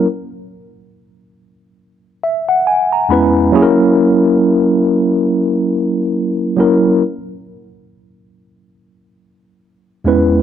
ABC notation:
X:1
M:4/4
L:1/16
Q:"Swing 16ths" 1/4=69
K:C#dor
V:1 name="Tine electric piano"
z8 z2 e f g a [E,,G,B,CEBb]2 | [F,A,CEGA]4- [F,A,CEGA] z8 z [F,A,CEA]2 | z12 z2 [E,,G,B,CEB]2 |]